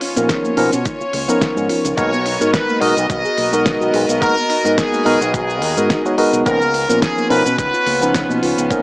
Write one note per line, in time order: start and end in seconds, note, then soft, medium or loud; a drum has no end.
0.00 1.94 C#4 medium
0.00 0.07 C#4 medium
0.00 1.94 F4 medium
0.00 1.95 C#5 loud
0.00 open hi-hat loud
0.16 0.27 A#2 medium
0.16 0.54 F3 medium
0.16 0.54 B3 medium
0.16 0.54 C#4 medium
0.16 0.54 D#4 medium
0.16 0.24 D#4 medium
0.16 0.54 A#4 medium
0.16 closed hi-hat medium
0.16 cabasa medium
0.29 0.38 G#4 medium
0.29 kick loud
0.29 snare loud
0.29 closed hi-hat medium
0.29 cabasa medium
0.45 0.52 A#3 loud
0.45 cabasa soft
0.57 0.70 B2 medium
0.57 0.69 F3 medium
0.57 0.69 B3 medium
0.57 0.63 B3 medium
0.57 0.70 C#4 medium
0.57 0.70 D#4 medium
0.57 0.70 A#4 loud
0.57 open hi-hat loud
0.72 0.83 B2 loud
0.72 0.80 C#4 loud
0.72 closed hi-hat medium
0.72 cabasa medium
0.85 0.94 D#4 loud
0.85 kick loud
0.85 closed hi-hat medium
0.85 cabasa medium
1.01 1.05 F4 loud
1.01 muted fingered electric bass stroke soft
1.01 cabasa soft
1.13 1.26 C#2 medium
1.13 1.19 A#3 medium
1.13 open hi-hat loud
1.28 1.94 F3 medium
1.28 1.94 B3 medium
1.28 1.36 B3 medium
1.28 1.95 C#4 medium
1.28 1.95 D#4 medium
1.28 1.95 A#4 medium
1.28 closed hi-hat medium
1.28 cabasa medium
1.41 1.51 C#4 medium
1.41 kick loud
1.41 snare loud
1.41 closed hi-hat medium
1.41 cabasa medium
1.57 1.67 G#2 loud
1.57 1.64 D#4 loud
1.57 cabasa soft
1.69 1.83 F4 loud
1.69 muted fingered electric bass stroke soft
1.69 open hi-hat loud
1.85 1.95 C#2 medium
1.85 1.96 B3 medium
1.85 closed hi-hat medium
1.85 cabasa medium
1.97 2.36 B1 loud
1.97 2.10 G#3 loud
1.97 2.07 A#3 loud
1.97 2.10 B3 medium
1.97 6.42 B3 medium
1.97 2.10 D#4 medium
1.97 2.10 F#4 medium
1.97 6.42 F#4 medium
1.97 6.42 A#4 medium
1.97 2.10 A#4 loud
1.97 2.50 C#5 loud
1.97 6.42 D#5 loud
1.97 kick loud
1.97 closed hi-hat medium
1.97 cabasa medium
2.13 2.17 B3 loud
2.13 closed hi-hat soft
2.13 cabasa soft
2.26 2.31 D#4 medium
2.26 open hi-hat loud
2.40 2.51 G#2 medium
2.40 2.78 G#3 medium
2.40 2.78 B3 medium
2.40 2.78 D#4 medium
2.40 2.79 F#4 medium
2.40 2.49 F#4 medium
2.40 2.79 A#4 medium
2.40 closed hi-hat medium
2.40 cabasa medium
2.53 2.63 A#4 medium
2.53 2.79 B4 medium
2.53 kick loud
2.53 snare loud
2.53 closed hi-hat medium
2.53 cabasa medium
2.69 2.76 A#3 loud
2.69 cabasa soft
2.81 2.94 B1 medium
2.81 2.93 G#3 medium
2.81 2.94 B3 medium
2.81 2.94 D#4 medium
2.81 2.94 F#4 medium
2.81 2.94 A#4 loud
2.81 3.08 D#5 loud
2.81 open hi-hat loud
2.97 3.07 B1 loud
2.97 3.04 D#4 loud
2.97 closed hi-hat medium
2.97 cabasa medium
3.09 3.22 B1 medium
3.09 3.19 F#4 loud
3.09 3.89 D#5 loud
3.09 kick loud
3.09 closed hi-hat medium
3.09 cabasa medium
3.25 3.29 G#4 loud
3.25 cabasa soft
3.38 3.76 B1 medium
3.38 3.43 A#3 medium
3.38 open hi-hat loud
3.52 4.18 G#3 medium
3.52 4.18 B3 medium
3.52 3.60 B3 medium
3.52 4.19 D#4 medium
3.52 4.19 F#4 medium
3.52 4.19 A#4 medium
3.52 closed hi-hat medium
3.52 cabasa medium
3.66 3.75 D#4 medium
3.66 kick loud
3.66 snare loud
3.66 closed hi-hat medium
3.66 cabasa medium
3.81 3.91 B1 medium
3.81 3.88 F#4 loud
3.81 cabasa soft
3.93 4.06 B1 medium
3.93 4.07 G#4 loud
3.93 open hi-hat loud
4.09 4.19 B1 medium
4.09 4.20 B3 medium
4.09 closed hi-hat medium
4.09 cabasa medium
4.21 4.34 G#3 loud
4.21 4.31 A#3 loud
4.21 4.34 B3 medium
4.21 4.34 D#4 medium
4.21 4.34 F#4 medium
4.21 4.74 A#4 loud
4.21 4.34 A#4 loud
4.21 kick loud
4.21 closed hi-hat medium
4.21 cabasa medium
4.37 4.42 B3 loud
4.37 closed hi-hat soft
4.37 cabasa soft
4.50 4.55 D#4 medium
4.50 open hi-hat loud
4.64 4.75 G#2 medium
4.64 5.03 G#3 medium
4.64 5.03 B3 medium
4.64 5.03 D#4 medium
4.64 4.73 F#4 medium
4.64 5.03 F#4 medium
4.64 5.03 A#4 medium
4.64 closed hi-hat soft
4.64 cabasa medium
4.78 5.34 G#4 loud
4.78 4.87 A#4 medium
4.78 kick loud
4.78 snare loud
4.78 closed hi-hat medium
4.78 cabasa medium
4.93 5.00 A#3 loud
4.93 cabasa soft
5.05 5.18 B1 medium
5.05 5.18 G#3 medium
5.05 5.18 B3 medium
5.05 5.11 B3 medium
5.05 5.18 D#4 medium
5.05 5.18 F#4 medium
5.05 5.18 A#4 loud
5.05 open hi-hat loud
5.21 5.62 B1 loud
5.21 5.28 D#4 loud
5.21 closed hi-hat medium
5.21 cabasa medium
5.34 5.43 F#4 loud
5.34 6.15 G#4 medium
5.34 kick loud
5.34 closed hi-hat medium
5.34 cabasa medium
5.49 5.53 G#4 loud
5.49 cabasa soft
5.62 5.74 D#2 medium
5.62 5.71 A#4 medium
5.62 open hi-hat loud
5.77 5.87 G#2 loud
5.77 6.01 G#3 medium
5.77 6.02 B3 medium
5.77 5.82 D#4 loud
5.77 6.02 D#4 medium
5.77 6.02 F#4 medium
5.77 6.02 A#4 medium
5.77 closed hi-hat medium
5.77 cabasa medium
5.90 5.99 D#4 loud
5.90 kick loud
5.90 snare loud
5.90 closed hi-hat medium
5.90 cabasa medium
6.05 6.15 G#3 medium
6.05 6.15 B3 medium
6.05 6.15 D#4 medium
6.05 6.12 F#4 medium
6.05 6.15 F#4 medium
6.05 6.15 C#5 medium
6.05 cabasa soft
6.17 6.43 G#3 medium
6.17 6.43 B3 medium
6.17 6.43 D#4 medium
6.17 6.43 F#4 medium
6.17 6.31 G#4 medium
6.17 6.43 A#4 medium
6.17 muted fingered electric bass stroke soft
6.17 open hi-hat loud
6.33 6.43 B1 loud
6.33 6.44 B3 loud
6.33 closed hi-hat medium
6.33 cabasa medium
6.46 6.85 C#2 loud
6.46 6.58 F3 loud
6.46 6.55 A#3 loud
6.46 6.58 B3 medium
6.46 8.82 B3 loud
6.46 6.58 C#4 medium
6.46 8.82 C#4 medium
6.46 6.59 D#4 medium
6.46 8.82 F4 medium
6.46 6.98 A#4 loud
6.46 6.59 A#4 loud
6.46 kick loud
6.46 closed hi-hat medium
6.46 cabasa medium
6.61 6.66 B3 loud
6.61 closed hi-hat soft
6.61 cabasa soft
6.74 6.79 C#4 medium
6.74 open hi-hat loud
6.89 7.00 A#2 medium
6.89 7.27 F3 medium
6.89 7.27 B3 medium
6.89 7.27 C#4 medium
6.89 6.97 D#4 medium
6.89 7.27 D#4 medium
6.89 7.27 A#4 medium
6.89 closed hi-hat soft
6.89 cabasa medium
7.02 7.11 G#4 medium
7.02 7.28 G#4 loud
7.02 kick loud
7.02 snare loud
7.02 closed hi-hat medium
7.02 cabasa medium
7.17 7.25 A#3 loud
7.17 cabasa soft
7.30 7.42 B2 medium
7.30 7.42 F3 medium
7.30 7.42 B3 medium
7.30 7.36 B3 medium
7.30 7.43 C#4 medium
7.30 7.43 D#4 medium
7.30 7.43 A#4 loud
7.30 7.56 B4 loud
7.30 open hi-hat loud
7.45 7.56 B2 loud
7.45 7.53 C#4 loud
7.45 closed hi-hat soft
7.45 cabasa medium
7.58 7.71 C#2 medium
7.58 7.67 D#4 loud
7.58 8.38 B4 loud
7.58 kick loud
7.58 closed hi-hat medium
7.58 cabasa medium
7.74 7.78 F4 loud
7.74 cabasa soft
7.86 8.25 C#2 medium
7.86 7.92 A#3 medium
7.86 open hi-hat loud
8.01 8.67 F3 medium
8.01 8.67 B3 medium
8.01 8.09 B3 medium
8.01 8.67 C#4 medium
8.01 8.68 D#4 medium
8.01 8.68 B4 medium
8.01 closed hi-hat soft
8.01 cabasa medium
8.14 8.23 C#4 medium
8.14 kick loud
8.14 snare loud
8.14 closed hi-hat medium
8.14 cabasa medium
8.30 8.40 B2 medium
8.30 8.41 A#3 medium
8.30 cabasa soft
8.42 8.54 C#2 medium
8.42 8.56 F4 loud
8.42 open hi-hat loud
8.58 8.68 C#2 medium
8.58 8.69 B3 medium
8.58 closed hi-hat medium
8.58 cabasa medium
8.70 8.82 F3 loud
8.70 8.79 A#3 loud
8.70 8.82 B3 medium
8.70 8.82 C#4 medium
8.70 8.82 D#4 medium
8.70 8.82 A#4 loud
8.70 kick loud
8.70 closed hi-hat medium
8.70 cabasa medium